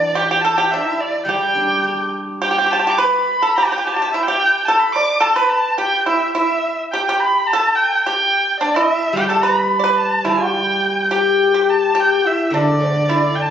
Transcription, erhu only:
Already playing: D5
0.15 G5
0.28 G5
0.41 A5
0.56 G5
0.71 E5
1.01 D5
1.27 G5
2.45 G5
2.72 A5
2.90 D6
2.99 B5
3.56 G5
3.86 A5
4.13 E5
4.23 G5
4.65 A5
4.79 B5
4.92 D6
5.22 A5
5.36 B5
5.49 A5
5.80 G5
6.08 E5
6.36 E5
6.92 G5
7.07 G5
7.20 B5
7.47 A5
7.75 G5
8.03 G5
8.60 D5
8.74 E5
9.16 G5
9.28 A5
9.43 B5
9.98 A5
10.27 G5
11.12 G5
11.70 A5
12.00 G5
12.27 E5
12.46 E5
12.54 D5
13.35 G5
13.42 A5

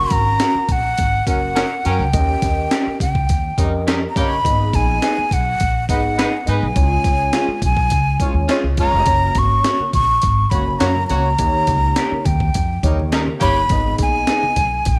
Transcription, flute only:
Already playing: C#6
0.12 A#5
0.72 F#5
1.29 F#5
1.86 G5
3.01 G5
4.09 A#5
4.17 B5
4.75 G#5
5.33 F#5
5.89 F#5
6.49 G#5
7.65 G#5
8.79 A#5
9.38 C#6
9.94 C#6
10.50 B5
10.79 A#5
11.07 A#5
12.25 G5
13.42 B5
14.02 G#5
14.89 F#5

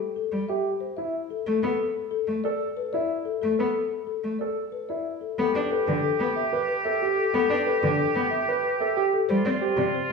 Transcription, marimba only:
0.16 A4
0.49 E5
0.80 C5
0.97 E5
1.30 A4
1.47 A4
1.79 A4
2.11 A4
2.44 D5
2.77 B4
2.93 D5
3.25 A4
3.42 A4
3.58 B4
3.74 A4
4.07 A4
4.39 D5
4.72 B4
4.89 D5
5.21 A4
5.38 A4
5.54 B4
5.70 A4
5.86 B4
6.03 A4
6.19 B4
6.36 E5
6.68 B4
6.85 E5
7.17 A4
7.34 A4
7.67 A4
7.82 B4
7.99 A4
8.14 B4
8.30 E5
8.64 B4
8.80 E5
9.13 A4
9.29 C5
9.46 D5
9.62 C5
9.78 D5
9.95 C5

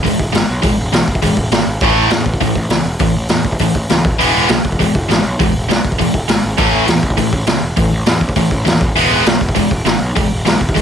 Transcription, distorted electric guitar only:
0.03 E3 G#3
0.33 E3 G#3
0.62 E3 G#3
0.93 E3 G#3
1.22 E3 G#3
1.52 E3 G#3
1.82 A2 E3 A3
2.12 A2 E3
2.40 A2 E3
2.71 A2 E3
3.00 A2 E3
3.30 A2 E3
3.60 A2 E3
3.90 A2 E3
4.19 E3 G#3 B3
4.49 E3 G#3
4.79 E3 G#3
5.09 E3 G#3
5.39 E3 G#3
5.69 E3 G#3
5.99 E3 G#3
6.29 E3 G#3
6.58 A2 E3 A3
6.87 A2 E3
7.17 A2 E3
7.47 A2 E3
7.77 A2 E3
8.07 A2 E3
8.36 A2 E3
8.65 A2 E3
8.96 E3 G#3 B3
9.26 E3 G#3
9.55 E3 G#3
9.85 E3 G#3
10.15 E3 G#3
10.45 E3 G#3
10.75 E3 G#3

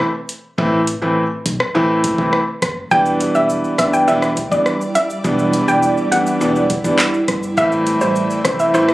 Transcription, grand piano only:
0.58 E3 A3 C4 E4
1.02 E3 A3 C4 E4
1.75 E3 A3 C4 E4
2.18 E3 A3 C4 E4
2.91 E3 G3 B3 D4
3.78 E3 G3 B3 D4
4.08 E3 G3 B3 D4
4.51 E3 G3 B3 D4
5.24 E3 G3 B3 D4
6.12 E3 G3 B3 D4
6.41 E3 G3 B3 D4
6.84 E3 G3 B3 D4
7.57 E3 A3 C4 E4
8.44 E3 A3 C4 E4
8.74 E3 A3 C4 E4

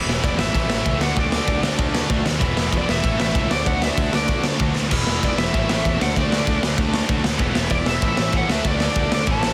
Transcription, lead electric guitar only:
0.24 D5
0.40 E5
1.03 F#5
1.19 D5
2.78 D5
2.91 E5
3.22 E5
3.52 D5
3.67 F#5
3.83 E5
4.15 D5
5.25 D5
5.39 E5
6.03 F#5
6.17 D5
7.71 D5
7.87 E5
8.37 F#5
8.51 E5
8.67 D5
9.14 D5
9.31 A5

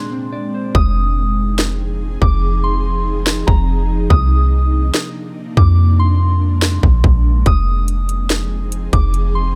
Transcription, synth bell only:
Already playing: C6
0.75 D#6
2.22 D6
2.64 C6
3.47 A#5
4.10 D#6
5.57 D6
5.99 C6
7.47 D#6
8.93 D6
9.35 C6

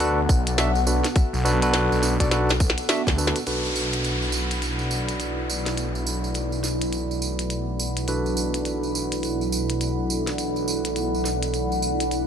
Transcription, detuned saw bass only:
Already playing: D2
0.29 B1
0.58 B1
1.33 B1
1.91 B1
2.20 B1
3.07 D2
3.47 B1

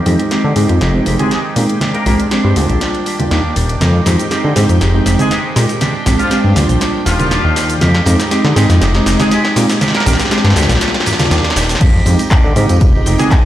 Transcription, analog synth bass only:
0.06 F2
0.44 D3
0.56 G#2
0.69 F2
0.81 F1
1.06 F1
1.56 A#2
2.06 A#1
2.44 G2
2.56 D2
2.69 A#1
3.20 D#2
3.31 D#2
3.56 D#1
3.81 F2
4.06 F2
4.44 D3
4.56 G#2
4.69 F2
4.81 F1
5.06 F1
5.56 A#2
6.06 A#1
6.44 G2
6.56 D2
6.69 A#1
7.06 D#1
7.44 D#2
7.81 F2
8.06 F2
8.44 D3
8.56 G#2
8.70 F2
8.81 F1
9.06 F1
9.56 A#2
10.06 A#1
10.44 G2
10.56 D2
10.69 A#1
11.19 D#2
11.31 D#2
11.56 D#1
11.81 F2
12.06 F2
12.44 D3
12.56 G#2
12.70 F2
12.81 F1
13.06 F1

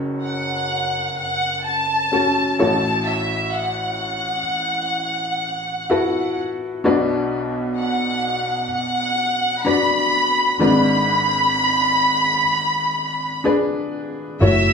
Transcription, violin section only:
0.23 F#5
1.18 F#5
1.66 A5
2.60 A5
3.07 E5
3.55 F#5
7.79 F#5
8.73 F#5
9.66 B5
10.61 B5
14.43 E5 E6

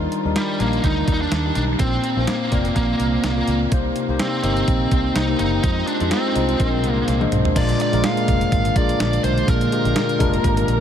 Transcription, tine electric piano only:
Already playing: D#3 G3 D4 D#4 A#4
0.25 G3 D4 D#4 A#4
0.60 G3 D4 D#4 A#4
1.45 G3 D4 D#4 G4
1.80 A#2 A#3 C4 F4 C5
2.17 A#3 C4 F4 C5
2.51 A#3 C4 F4 D5
3.36 A#3 C4 F4 A#4
3.71 C3 A#3 D#4 G4 C5
4.09 A#3 D#4 G4 C5
4.43 A#3 D#4 G4 D#5
5.28 A#3 D#4 G4 A#4
5.63 G#3 D#4 F4 C5
6.01 G#3 D#4 F4 C5
6.35 G#3 D#4 F4 C5
6.59 A#2 G#3 D4 F4 A#4
7.21 G#3 D4 F4 C5
7.55 A#2 G#3 D4 F4 A#4
7.93 G#3 D4 F4 A#4
8.76 G#3 D4 F4 A#4
9.48 A#2 G#3 D4 F4 A#4
9.72 G#3 D4 F4 G4
10.19 G#3 D4 F4 A#4

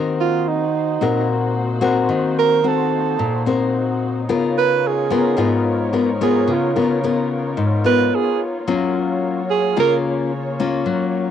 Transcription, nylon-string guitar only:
Already playing: D#3 C4 F#4 A#4
1.01 A#2 C4 F#4 A#4
1.81 C4 F#4 A#4
2.09 D#3
2.64 C4 F#4
3.19 A#2
3.46 C4 F#4 A#4
4.29 C#3 B3 F4 A#4
5.11 B3 F4 A#4
5.37 G#2 B3 F4 A#4
5.93 B3 F4 A#4
6.21 B3 F4 A#4
6.48 C#3
6.76 B3 F4 A#4
7.04 B3 F4 A#4
7.57 G#2
7.84 B3 F4 A#4
8.67 F#3 A#3 C#4 F4
9.76 C#3 A#3 C#4 F4
10.60 A#3 C#4 F4
10.86 F#3

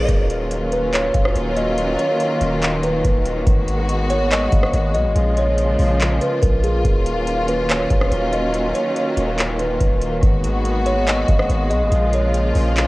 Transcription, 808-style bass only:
0.09 D#1
1.15 D#1
1.35 D#1
2.41 D#1
3.05 D#1
3.47 G#1
4.53 G#1
4.73 G#1
4.95 B1
5.05 G#1
5.16 A#1
5.79 A#1
6.43 A#1
6.85 D#1
7.91 D#1
8.12 D#1
9.17 D#1
9.81 D#1
10.23 G#1
11.29 G#1
11.50 G#1
11.71 B1
11.81 G#1
11.92 A#1
12.55 A#1

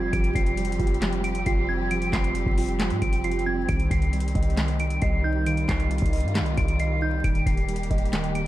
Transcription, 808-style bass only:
Already playing: F1
0.13 F1
0.35 F1
0.80 F1
1.46 F1
2.13 F1
2.46 F1
2.91 G#2
3.02 F1
3.69 C2
3.91 C2
4.35 C2
5.02 C2
5.69 C2
6.02 C2
6.24 G2
6.41 C2
6.57 C2
7.24 D#1
7.46 D#1
7.91 D#1

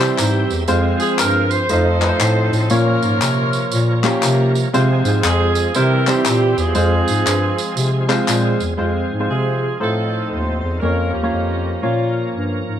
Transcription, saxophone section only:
Already playing: C4 E4 G4
1.00 G#4
1.19 A#4
1.51 C5
1.69 D#4 A4 C5
2.71 F4 A#4 C#5
5.24 C4 F4 G#4
5.74 E4 G4 A#4
6.08 C4 E4 G4
6.58 C4 F4 G#4
9.29 C4 F4 G#4
9.81 C4 D#4 A4
10.30 C5
10.61 C5
10.80 C#4 F4 A#4
11.12 A#3 C#4 G4
11.83 A#3 C#4 F4

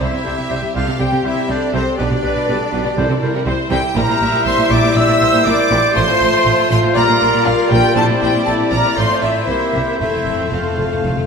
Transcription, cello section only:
0.01 C3
0.13 C3
0.26 C3
0.38 C3
0.50 C3
0.63 C3
0.75 C3
0.87 C3
0.99 C3
1.11 C3
1.23 C3
1.35 C3
1.48 C3
1.74 C3
1.98 B2
2.11 B2
2.23 B2
2.36 B2
2.48 B2
2.60 B2
2.73 B2
2.85 B2
2.98 C3
3.09 C3
3.21 C3
3.34 C3
3.46 C3
3.70 C3
3.95 A#2
4.08 A#2
4.21 A#2
4.32 A#2
4.45 A#2
4.58 A#2
4.70 A#2
4.83 A#2
4.95 A#2
5.07 A#2
5.20 A#2
5.33 A#2
5.46 A#2
5.71 A#2
5.96 A2
6.09 A2
6.21 A2
6.34 A2
6.47 A2
6.59 A2
6.71 A2
6.83 A2
6.96 A#2
7.09 A#2
7.21 A#2
7.33 A#2
7.46 A#2
7.71 A#2
7.96 A#2
8.09 A#2
8.21 A#2
8.34 A#2
8.47 A#2
8.59 A#2
8.72 A#2
8.85 A#2
8.97 A2
9.10 A2
9.22 A2
9.35 A2
9.48 C3
9.72 C3
9.99 F2
10.13 F2
10.26 F2
10.38 F2
10.52 F2
10.65 F2
10.78 F2
10.91 F2
11.04 F2
11.16 F2

